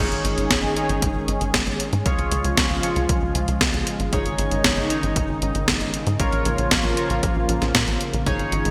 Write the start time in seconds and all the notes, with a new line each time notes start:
0.00 D#3 G#3 C#4 D#4 G#4 C#5
0.12 G#1, closed hi-hat
0.25 G#1, closed hi-hat
0.38 G#1, closed hi-hat
0.51 G#1, kick, snare, closed hi-hat
0.64 G#1
0.76 D#4 G#4 C#5, closed hi-hat
0.89 G#1, closed hi-hat
1.02 G#1, kick, closed hi-hat
1.15 G#1
1.28 G#1, closed hi-hat
1.41 G#1, closed hi-hat
1.54 G#1, kick, snare, closed hi-hat
1.67 G#1, closed hi-hat
1.80 closed hi-hat
1.93 G#2, closed hi-hat
2.06 C#2 C#3 F3 F4 G#4 C#5, kick, closed hi-hat
2.19 C#2, closed hi-hat
2.32 C#2, closed hi-hat
2.44 C#2, closed hi-hat
2.57 C#2, kick, snare, closed hi-hat
2.70 C#2
2.83 F4 G#4 C#5, closed hi-hat
2.96 C#2, closed hi-hat
3.09 C#2, kick, closed hi-hat
3.22 C#2
3.35 C#2, closed hi-hat
3.48 C#2, closed hi-hat
3.61 C#2, kick, snare, closed hi-hat
3.74 C#2, closed hi-hat
3.87 closed hi-hat
4.00 G#1, closed hi-hat
4.13 G#1 D#3 D#4 G#4 C#5, kick, closed hi-hat
4.26 G#1, closed hi-hat
4.38 G#1, closed hi-hat
4.51 G#1, closed hi-hat
4.64 G#1, kick, snare, closed hi-hat
4.77 G#1
4.90 D#4 G#4 C#5, closed hi-hat
5.03 G#1, closed hi-hat
5.16 G#1, kick, closed hi-hat
5.29 G#1
5.42 G#1, closed hi-hat
5.55 G#1, closed hi-hat
5.68 G#1, kick, snare, closed hi-hat
5.81 G#1, closed hi-hat
5.94 closed hi-hat
6.07 G#2, closed hi-hat
6.20 A#1 F3 A#3 F4 A#4 C#5, kick, closed hi-hat
6.32 A#1, closed hi-hat
6.45 A#1, closed hi-hat
6.58 A#1, closed hi-hat
6.71 A#1, kick, snare, closed hi-hat
6.84 A#1
6.97 F4 A#4 C#5, closed hi-hat
7.10 A#1, closed hi-hat
7.23 A#1, kick, closed hi-hat
7.36 A#1
7.49 A#1, closed hi-hat
7.62 A#1, snare, closed hi-hat
7.75 A#2, kick, snare, closed hi-hat
7.88 A#1, closed hi-hat
8.01 closed hi-hat
8.14 A#1, closed hi-hat
8.26 G#1 D#3 G#3 D#4 G#4 C#5, kick, closed hi-hat
8.39 G#1, closed hi-hat
8.52 G#1, closed hi-hat
8.65 G#1, closed hi-hat